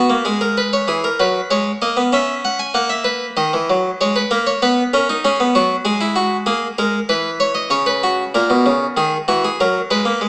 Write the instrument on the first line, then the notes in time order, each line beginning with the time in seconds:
harpsichord
Already playing: F#4
0.10 A#3
0.25 G#3 G#4
0.41 A#4
0.58 B4
0.73 C#5
0.88 E3 G#4
1.04 A#4
1.20 F#3 B4
1.51 G#3 C#5
1.82 A#3 D#5
1.97 B3
2.13 C#4 E5
2.45 F#5
2.59 G#5
2.74 A#3 F#5
2.90 E5
3.04 B4
3.37 D#3 D#5
3.53 E3
3.70 F#3
4.01 G#3 C#5
4.16 B4
4.31 A#3 A#4
4.47 C#5
4.62 B3 B4
4.93 C#4 A#4
5.09 D#4
5.25 C#4 G#4
5.40 B3
5.55 F#3 F#4
5.85 G#3 G#4
6.01 E4
6.16 F#4
6.46 A#3 G#4
6.78 G#3 A#4
7.09 E3 B4
7.40 C#5
7.55 D#5
7.70 C#3 C#5
7.86 B4
8.03 F#4
8.35 A#2 A#4
8.50 B2
8.66 C#3
8.97 D#3 G#4
9.28 E3 F#4
9.45 G#4
9.60 F#3 A#4
9.91 G#3 B4
10.05 A#3
10.21 G#3